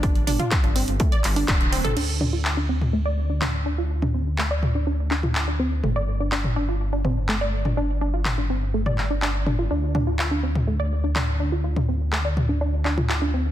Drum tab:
CC |----------------|x---------------|----------------|----------------|
HH |xxoxxxoxxxooxxox|----------------|----------------|----------------|
CP |----x-----x-x---|----x-------x---|----x-----x-x---|----x-------x---|
T2 |--oo-----------o|--o----o----o---|-o----o----o----|o----o----o----o|
BD |o---o---o---o---|----------------|----------------|----------------|

CC |----------------|----------------|----------------|
HH |----------------|----------------|----------------|
CP |----x-----x-x---|----x-------x---|----x-----x-x---|
T2 |----o----o----o-|--o----o----o---|-o----o----o----|
BD |----------------|----------------|----------------|